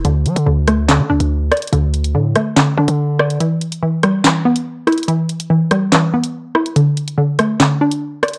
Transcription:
<<
  \new Staff \with { instrumentName = "Synth pluck" } { \clef bass \time 4/4 \key d \mixolydian \tempo 4 = 143 d4 d8 a8 d8 d'4 d''8 | d4 d8 a8 d8 d'4 d''8 | e4 e8 g8 e8 b4 e'8 | e4 e8 g8 e8 b4 e'8 |
d4 d8 a8 d8 d'4 d''8 | }
  \new Staff \with { instrumentName = "808-style bass" } { \clef bass \time 4/4 \key d \mixolydian d,8 fis16 d16 d,4~ d,16 d16 d,16 d,8. r8 | d,4 a,8 r4 d16 d4~ d16 | r1 | r1 |
r1 | }
  \new DrumStaff \with { instrumentName = "Drums" } \drummode { \time 4/4 hh8 hh16 hh16 r8 <hh ss>8 <hc sn>8. hh16 r8 <hh ss>32 hh32 hh32 hh32 | hh8 hh16 hh16 r8 <hh ss>8 <hc sn>8. hh16 r8 ss16 hh16 | hh8 hh16 hh16 r8 <hh ss>8 <hc sn>8. hh16 r8 <hh ss>32 hh32 hh32 hh32 | hh8 hh16 hh16 r8 <hh ss>8 <hc sn>8. hh16 r8 ss16 hh16 |
hh8 hh16 hh16 r8 <hh ss>8 <hc sn>8. hh16 r8 <hh ss>32 hh32 hh16 | }
>>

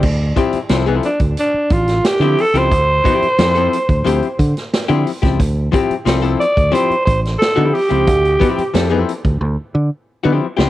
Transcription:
<<
  \new Staff \with { instrumentName = "Alto saxophone" } { \time 4/4 \key d \minor \tempo 4 = 90 r4. d'8 d'8 f'8 g'8 a'16 c''16~ | c''2~ c''8. r4 r16 | r4. d''8 c''8 c''8 a'8 g'8~ | g'4. r2 r8 | }
  \new Staff \with { instrumentName = "Hollow-body jazz guitar" } { \time 4/4 \key d \minor r8 <f c' e' g'>16 r16 <f c' e' a'>16 <f c' e' a'>16 r4. r16 <f c' e' g'>16 r16 <f c' e' g'>16 | r8 <f c' e' g'>16 r16 <f c' e' a'>16 <f c' e' a'>16 r8 <f c' e' g'>16 r4 <f c' e' g'>16 r16 <f c' e' g'>16 | r8 <f c' e' g'>16 r16 <f c' e' a'>16 <f c' e' a'>16 r8 <f c' e' g'>16 r4 <f c' e' g'>16 r16 <f c' e' g'>16 | r8 <f c' e' g'>16 r16 <f c' e' a'>16 <f c' e' a'>16 r4. r16 <f c' e' g'>16 r16 <f c' e' g'>16 | }
  \new Staff \with { instrumentName = "Fingered electric bass" } { \clef bass \time 4/4 \key d \minor d,8 r8 c,8 r16 d,16 r8 a,,8 r16 d16 r16 cis,16 | d,8 r8 f,8 r16 d,16 d,16 r16 d16 r8 d16 r16 cis,16 | d,8 r8 c,8 r16 d,16 r8 a,,8 r16 d16 r16 cis,16 | d,8 r8 f,8 r16 d,16 d,16 r16 d16 r8 d16 r16 cis,16 | }
  \new DrumStaff \with { instrumentName = "Drums" } \drummode { \time 4/4 <cymc bd>8 <hh bd>16 hh16 <hh sn>8 hh16 <hh bd>16 hh8 <hh bd>16 <hh sn>16 <hh sn>16 hh16 hho16 hh16 | <hh bd>8 <hh bd>16 hh16 <hh sn>16 hh16 hh16 <hh bd>16 hh16 hh16 <hh bd>16 <hh sn>16 <hh sn>16 hh16 hho16 <hh bd sn>16 | <hh bd>8 <hh bd>16 hh16 <hh sn>16 hh16 hh16 <hh bd>16 hh16 hh16 <hh bd>16 <hh sn>16 <hh sn>8 hho16 hh16 | <hh bd>16 hh16 <hh bd>16 hh16 <hh sn>8 hh16 <hh bd>16 r4 r8. sn16 | }
>>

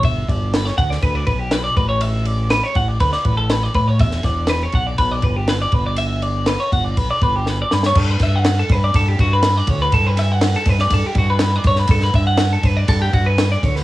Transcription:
<<
  \new Staff \with { instrumentName = "Clean electric guitar" } { \time 4/4 \key g \lydian \tempo 4 = 121 e''8 d''8 b'16 cis''16 fis''16 d''16 b'16 d''16 b'16 g'16 b'16 d''16 b'16 cis''16 | e''8 d''8 b'16 cis''16 fis''16 d''16 b'16 d''16 b'16 a'16 b'16 d''16 b'16 cis''16 | e''8 d''8 b'16 cis''16 fis''16 d''16 b'16 d''16 b'16 g'16 b'16 d''16 b'16 d''16 | e''8 d''8 b'16 cis''16 fis''16 d''16 b'16 d''16 b'16 g'16 b'16 d''16 b'16 cis''16 |
a'16 b'16 e''16 fis''8 a'16 b'16 d''16 a'16 g'16 fis'16 b'8 d''16 cis''16 b'16 | a'16 b'16 e''16 fis''8 a'16 b'16 d''16 a'16 g'16 fis'16 b'8 d''16 cis''16 b'16 | a'16 b'16 e''16 fis''8 a'16 b'16 d''16 a'16 g'16 fis'16 b'8 d''16 cis''16 b'16 | }
  \new Staff \with { instrumentName = "Fingered electric bass" } { \clef bass \time 4/4 \key g \lydian g,,8 g,,4 d,8 d,8 b,,4 a,,8~ | a,,4. a,,8 d,16 r16 a,,4 a,8 | e,,8 e,,4 b,,8 b,,8 g,,4 g,,8~ | g,,4. g,,8 b,,16 r16 g,,4 g,8 |
g,8 g,4 g,8 g,8 g,4 d,8 | g,4. g,8 g,16 r16 g,4 g,8 | g,8 g,4 g,8 g,8 g,4 d,8 | }
  \new DrumStaff \with { instrumentName = "Drums" } \drummode { \time 4/4 <bd cymr>8 <bd cymr>8 <cymr sn>16 sn16 <bd cymr>16 sn16 <bd cymr>8 <bd cymr>8 <cymr sn>8 <bd cymr>8 | cymr8 cymr8 <cymr sn>8 <bd cymr>8 <bd cymr>16 sn16 <bd cymr>8 <cymr sn>8 <bd cymr>8 | <bd cymr>16 sn16 <bd cymr sn>8 <cymr sn>8 <bd cymr>8 <bd cymr>8 <bd cymr>8 <cymr sn>8 <bd cymr>8 | cymr8 cymr8 <cymr sn>8 <bd cymr>8 <bd cymr>8 <bd cymr>8 sn8 sn16 sn16 |
<cymc bd>8 <bd cymr sn>8 <cymr sn>8 <bd cymr>8 <bd cymr>8 <bd cymr>8 <cymr sn>8 <bd cymr>8 | <bd cymr>8 <cymr sn>8 <cymr sn>16 sn16 <bd cymr>16 sn16 <bd cymr>8 <bd cymr>8 <cymr sn>8 <bd cymr>16 sn16 | <bd cymr>16 sn16 <bd cymr>8 <cymr sn>8 <bd cymr>8 <bd cymr>8 <bd cymr>8 <cymr sn>8 <bd cymr>16 sn16 | }
>>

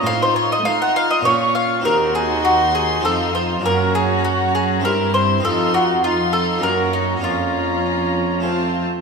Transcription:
<<
  \new Staff \with { instrumentName = "Violin section" } { \time 3/4 \key bes \dorian \tempo 4 = 100 c'''4 c'''4 des'''4 | \key f \phrygian c'''2. | bes''2 c'''4 | c'''4 c'''4 bes''4 |
bes''2 a''8 r8 | }
  \new Staff \with { instrumentName = "Mandolin" } { \time 3/4 \key bes \dorian f''16 c''16 des''16 ees''16 f''16 ges''16 f''16 ees''16 des''8 f''8 | \key f \phrygian bes'8 aes'8 ges'8 aes'8 a'8 c''8 | bes'8 aes'8 ges'8 aes'8 bes'8 c''8 | a'8 ges'8 f'8 a'8 bes'8 ees'8 |
f'2~ f'8 r8 | }
  \new Staff \with { instrumentName = "Violin section" } { \time 3/4 \key bes \dorian f'4 f'4 f'4 | \key f \phrygian ges'2 f'4 | ges'2 e'4 | f'4 f'4 ges'4 |
f'2 f'8 r8 | }
  \new Staff \with { instrumentName = "Viola section" } { \time 3/4 \key bes \dorian ees'4 ees'4 des'4 | \key f \phrygian ees'2. | des'2 c'4 | ees'4 ees'4 des'4 |
des'2 c'8 r8 | }
  \new Staff \with { instrumentName = "Harpsichord" } { \time 3/4 \key bes \dorian <c' ees' f'>2 <bes des' f'>4 | \key f \phrygian <c' ees' ges'>2 <c' ees' f'>4 | <bes des'>2 <c' e'>4 | <c' ees' f'>2 <bes des'>4 |
<bes des' f'>2 <a c' f'>4 | }
  \new Staff \with { instrumentName = "Harpsichord" } { \clef bass \time 3/4 \key bes \dorian a,4 a4 bes,4 | \key f \phrygian ees,2 f,4 | ges,2 g,4 | f,2 ges,4 |
f,2~ f,8 r8 | }
  \new Staff \with { instrumentName = "Cello section" } { \clef bass \time 3/4 \key bes \dorian a,4 a4 bes,4 | \key f \phrygian ees,2 f,4 | ges,2 g,4 | f,2 ges,4 |
f,2~ f,8 r8 | }
>>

